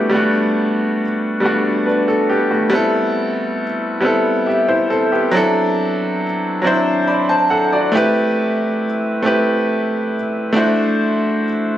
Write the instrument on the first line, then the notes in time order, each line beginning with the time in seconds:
grand piano
Already playing: G3 A3 B3 D4 E4 F#4 G4 A4 B4
0.10 G3 A3 B3 D4
0.15 F#4
1.40 G3 A3 B3 D4
1.46 F#4
1.86 D4 B4
2.08 A4
2.30 B3 G4
2.51 A3 F#4
2.70 G3 B3 C4
2.74 E4 A4
4.01 G3 B3 C4
4.05 E4 A4
4.46 G4 E5
4.68 E4 C5
4.90 C4 A4
5.12 B3 G4
5.31 F#3 C4 D4
5.36 E4 A4
6.62 F#3 C4 D4 E4
6.67 C5
7.07 D5 B5
7.29 C5 A5
7.50 A4 F#5
7.73 F#4 D5
7.92 A3 C4 E4 G4
7.97 B4
9.22 A3 C4 E4 G4
9.27 B4
10.53 A3 D4 E4
10.57 F#4 C5